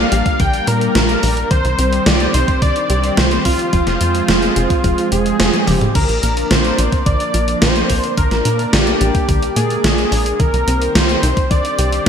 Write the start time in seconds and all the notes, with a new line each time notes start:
Already playing: G3 A#3 D4 A#4 D5 F5
0.12 A#1 G4, closed hi-hat
0.26 kick, closed hi-hat
0.40 A#1 D3 G5, kick, closed hi-hat
0.53 closed hi-hat
0.67 A#2 A#3 A#4, closed hi-hat
0.81 closed hi-hat
0.95 A#1 D3, snare, closed hi-hat
1.09 closed hi-hat
1.23 A#1 D4, open hi-hat
1.37 closed hi-hat
1.51 C2 D#3 C4 G4 C5, kick, closed hi-hat
1.65 C2, closed hi-hat
1.79 C2 C4, closed hi-hat
1.93 closed hi-hat
2.06 C2 D#3 D5, snare, closed hi-hat
2.20 closed hi-hat
2.34 C2 D#4 C5, closed hi-hat
2.48 kick, closed hi-hat
2.62 C2 D#3 D5, kick, closed hi-hat
2.76 closed hi-hat
2.90 C2 G4 D5, closed hi-hat
3.04 closed hi-hat
3.17 C2 D#3 C5, snare, closed hi-hat
3.31 closed hi-hat
3.45 C2 C4 F4, kick, open hi-hat
3.59 closed hi-hat
3.73 F1 F3 G#3 G#4, kick, closed hi-hat
3.87 F1, snare, closed hi-hat
4.01 F2 F4, closed hi-hat
4.15 closed hi-hat
4.28 F1 F3, snare, closed hi-hat
4.42 closed hi-hat
4.56 F1 G#4, closed hi-hat
4.70 kick, closed hi-hat
4.84 F1 F3, kick, closed hi-hat
4.98 closed hi-hat
5.12 F1 F3 G#4, closed hi-hat
5.26 closed hi-hat
5.40 F1 C5, snare, closed hi-hat, high tom
5.54 closed hi-hat, high tom
5.66 F1 F3 G4, open hi-hat, mid tom
5.81 closed hi-hat, mid tom
5.95 A#1 D3 F3 A#3 D4 A#4 D5, kick, closed hi-hat, crash
6.09 A#1, closed hi-hat
6.23 A#1 A#3, closed hi-hat
6.37 closed hi-hat
6.51 A#1 D3 C5, snare, closed hi-hat
6.65 closed hi-hat
6.78 A#1 D4, closed hi-hat
6.92 kick, closed hi-hat
7.06 A#1 D3 D5, kick, closed hi-hat
7.20 closed hi-hat
7.34 A#1 F4, closed hi-hat
7.48 closed hi-hat
7.62 A#1 D3 C5, snare, closed hi-hat
7.76 closed hi-hat
7.90 A#1 A#3, kick, open hi-hat
8.04 closed hi-hat
8.17 A#1 D3 A#3 A#4 D5, kick, closed hi-hat
8.31 A#1, snare, closed hi-hat
8.45 A#2 D4, closed hi-hat
8.59 closed hi-hat
8.73 A#1 D3 G4, snare, closed hi-hat
8.87 closed hi-hat
9.01 A#1 G4, closed hi-hat
9.15 kick, closed hi-hat
9.29 A#1 D3, kick, closed hi-hat
9.43 closed hi-hat
9.56 A#2 A#3 G#4, closed hi-hat
9.70 closed hi-hat
9.84 A#1 D3, snare, closed hi-hat
9.98 closed hi-hat
10.12 A#1 D4, open hi-hat
10.26 closed hi-hat
10.39 C2 D#3 C4 G4 A#4 C5, kick, closed hi-hat
10.53 C2, closed hi-hat
10.67 C2 C4, closed hi-hat
10.82 closed hi-hat
10.95 C2 D#3 C5, snare, closed hi-hat
11.09 closed hi-hat
11.23 C2 D#4, closed hi-hat
11.37 kick, closed hi-hat
11.51 C2 D#3 D5, kick, closed hi-hat
11.65 closed hi-hat
11.79 C2 G4, closed hi-hat
11.92 closed hi-hat